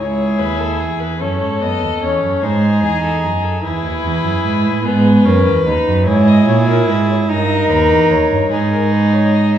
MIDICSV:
0, 0, Header, 1, 5, 480
1, 0, Start_track
1, 0, Tempo, 813008
1, 1435, Time_signature, 6, 3, 24, 8
1, 5657, End_track
2, 0, Start_track
2, 0, Title_t, "Violin"
2, 0, Program_c, 0, 40
2, 0, Note_on_c, 0, 73, 85
2, 229, Note_on_c, 0, 71, 83
2, 238, Note_off_c, 0, 73, 0
2, 349, Note_on_c, 0, 69, 73
2, 358, Note_off_c, 0, 71, 0
2, 472, Note_on_c, 0, 68, 80
2, 481, Note_off_c, 0, 69, 0
2, 588, Note_on_c, 0, 71, 78
2, 597, Note_off_c, 0, 68, 0
2, 706, Note_on_c, 0, 73, 83
2, 715, Note_off_c, 0, 71, 0
2, 955, Note_on_c, 0, 75, 94
2, 964, Note_off_c, 0, 73, 0
2, 1191, Note_off_c, 0, 75, 0
2, 1195, Note_on_c, 0, 73, 83
2, 1434, Note_on_c, 0, 72, 85
2, 1443, Note_off_c, 0, 73, 0
2, 1668, Note_off_c, 0, 72, 0
2, 1671, Note_on_c, 0, 68, 89
2, 1786, Note_off_c, 0, 68, 0
2, 1789, Note_on_c, 0, 69, 71
2, 1903, Note_off_c, 0, 69, 0
2, 1906, Note_on_c, 0, 68, 83
2, 2026, Note_on_c, 0, 69, 75
2, 2035, Note_off_c, 0, 68, 0
2, 2144, Note_off_c, 0, 69, 0
2, 2148, Note_on_c, 0, 71, 92
2, 2864, Note_on_c, 0, 68, 83
2, 2873, Note_off_c, 0, 71, 0
2, 3101, Note_on_c, 0, 70, 76
2, 3110, Note_off_c, 0, 68, 0
2, 3336, Note_off_c, 0, 70, 0
2, 3340, Note_on_c, 0, 71, 84
2, 3575, Note_off_c, 0, 71, 0
2, 3581, Note_on_c, 0, 73, 87
2, 3705, Note_on_c, 0, 75, 88
2, 3714, Note_off_c, 0, 73, 0
2, 3823, Note_off_c, 0, 75, 0
2, 3825, Note_on_c, 0, 73, 88
2, 3872, Note_off_c, 0, 73, 0
2, 3944, Note_on_c, 0, 70, 84
2, 4060, Note_off_c, 0, 70, 0
2, 4065, Note_on_c, 0, 71, 68
2, 4112, Note_off_c, 0, 71, 0
2, 4188, Note_on_c, 0, 73, 66
2, 4235, Note_off_c, 0, 73, 0
2, 4307, Note_on_c, 0, 75, 83
2, 4548, Note_on_c, 0, 71, 82
2, 4556, Note_off_c, 0, 75, 0
2, 4786, Note_on_c, 0, 73, 80
2, 4795, Note_off_c, 0, 71, 0
2, 5024, Note_on_c, 0, 71, 69
2, 5033, Note_off_c, 0, 73, 0
2, 5144, Note_off_c, 0, 71, 0
2, 5148, Note_on_c, 0, 70, 71
2, 5264, Note_off_c, 0, 70, 0
2, 5269, Note_on_c, 0, 71, 75
2, 5392, Note_on_c, 0, 73, 71
2, 5401, Note_off_c, 0, 71, 0
2, 5516, Note_on_c, 0, 75, 73
2, 5525, Note_off_c, 0, 73, 0
2, 5632, Note_off_c, 0, 75, 0
2, 5636, Note_on_c, 0, 76, 66
2, 5657, Note_off_c, 0, 76, 0
2, 5657, End_track
3, 0, Start_track
3, 0, Title_t, "Violin"
3, 0, Program_c, 1, 40
3, 0, Note_on_c, 1, 68, 83
3, 712, Note_on_c, 1, 69, 67
3, 721, Note_off_c, 1, 68, 0
3, 1430, Note_off_c, 1, 69, 0
3, 1433, Note_on_c, 1, 68, 83
3, 2134, Note_off_c, 1, 68, 0
3, 2149, Note_on_c, 1, 68, 76
3, 2850, Note_off_c, 1, 68, 0
3, 2864, Note_on_c, 1, 71, 89
3, 3580, Note_on_c, 1, 68, 78
3, 3589, Note_off_c, 1, 71, 0
3, 4305, Note_on_c, 1, 70, 105
3, 4314, Note_off_c, 1, 68, 0
3, 5022, Note_off_c, 1, 70, 0
3, 5025, Note_on_c, 1, 68, 79
3, 5657, Note_off_c, 1, 68, 0
3, 5657, End_track
4, 0, Start_track
4, 0, Title_t, "Viola"
4, 0, Program_c, 2, 41
4, 0, Note_on_c, 2, 64, 72
4, 691, Note_off_c, 2, 64, 0
4, 714, Note_on_c, 2, 61, 68
4, 954, Note_on_c, 2, 59, 64
4, 963, Note_off_c, 2, 61, 0
4, 1190, Note_off_c, 2, 59, 0
4, 1193, Note_on_c, 2, 61, 62
4, 1430, Note_on_c, 2, 63, 77
4, 1438, Note_off_c, 2, 61, 0
4, 2142, Note_off_c, 2, 63, 0
4, 2146, Note_on_c, 2, 64, 80
4, 2849, Note_off_c, 2, 64, 0
4, 2861, Note_on_c, 2, 59, 84
4, 3102, Note_on_c, 2, 61, 80
4, 3111, Note_off_c, 2, 59, 0
4, 3341, Note_off_c, 2, 61, 0
4, 3344, Note_on_c, 2, 63, 73
4, 3577, Note_off_c, 2, 63, 0
4, 3580, Note_on_c, 2, 64, 93
4, 4304, Note_on_c, 2, 63, 97
4, 4312, Note_off_c, 2, 64, 0
4, 5021, Note_off_c, 2, 63, 0
4, 5025, Note_on_c, 2, 63, 88
4, 5657, Note_off_c, 2, 63, 0
4, 5657, End_track
5, 0, Start_track
5, 0, Title_t, "Cello"
5, 0, Program_c, 3, 42
5, 0, Note_on_c, 3, 37, 72
5, 231, Note_on_c, 3, 39, 65
5, 240, Note_off_c, 3, 37, 0
5, 475, Note_on_c, 3, 40, 58
5, 483, Note_off_c, 3, 39, 0
5, 718, Note_on_c, 3, 42, 65
5, 727, Note_off_c, 3, 40, 0
5, 836, Note_on_c, 3, 44, 57
5, 845, Note_off_c, 3, 42, 0
5, 952, Note_off_c, 3, 44, 0
5, 956, Note_on_c, 3, 42, 65
5, 1003, Note_off_c, 3, 42, 0
5, 1077, Note_on_c, 3, 39, 61
5, 1124, Note_off_c, 3, 39, 0
5, 1199, Note_on_c, 3, 40, 60
5, 1309, Note_off_c, 3, 40, 0
5, 1313, Note_on_c, 3, 42, 62
5, 1360, Note_off_c, 3, 42, 0
5, 1433, Note_on_c, 3, 44, 80
5, 1673, Note_on_c, 3, 40, 72
5, 1682, Note_off_c, 3, 44, 0
5, 1911, Note_on_c, 3, 42, 62
5, 1920, Note_off_c, 3, 40, 0
5, 2145, Note_off_c, 3, 42, 0
5, 2149, Note_on_c, 3, 40, 61
5, 2262, Note_off_c, 3, 40, 0
5, 2266, Note_on_c, 3, 39, 66
5, 2313, Note_off_c, 3, 39, 0
5, 2384, Note_on_c, 3, 40, 80
5, 2499, Note_off_c, 3, 40, 0
5, 2503, Note_on_c, 3, 42, 67
5, 2550, Note_off_c, 3, 42, 0
5, 2620, Note_on_c, 3, 44, 71
5, 2744, Note_on_c, 3, 45, 79
5, 2753, Note_off_c, 3, 44, 0
5, 2863, Note_on_c, 3, 44, 104
5, 2872, Note_off_c, 3, 45, 0
5, 3099, Note_off_c, 3, 44, 0
5, 3102, Note_on_c, 3, 42, 81
5, 3223, Note_on_c, 3, 40, 85
5, 3231, Note_off_c, 3, 42, 0
5, 3340, Note_off_c, 3, 40, 0
5, 3344, Note_on_c, 3, 39, 78
5, 3391, Note_off_c, 3, 39, 0
5, 3465, Note_on_c, 3, 42, 87
5, 3580, Note_on_c, 3, 44, 97
5, 3589, Note_off_c, 3, 42, 0
5, 3817, Note_off_c, 3, 44, 0
5, 3820, Note_on_c, 3, 46, 95
5, 4056, Note_off_c, 3, 46, 0
5, 4060, Note_on_c, 3, 44, 88
5, 4297, Note_off_c, 3, 44, 0
5, 4303, Note_on_c, 3, 43, 90
5, 4539, Note_off_c, 3, 43, 0
5, 4543, Note_on_c, 3, 39, 85
5, 4667, Note_on_c, 3, 40, 92
5, 4675, Note_off_c, 3, 39, 0
5, 4782, Note_off_c, 3, 40, 0
5, 4785, Note_on_c, 3, 39, 75
5, 4832, Note_off_c, 3, 39, 0
5, 4904, Note_on_c, 3, 43, 83
5, 5021, Note_off_c, 3, 43, 0
5, 5027, Note_on_c, 3, 44, 93
5, 5657, Note_off_c, 3, 44, 0
5, 5657, End_track
0, 0, End_of_file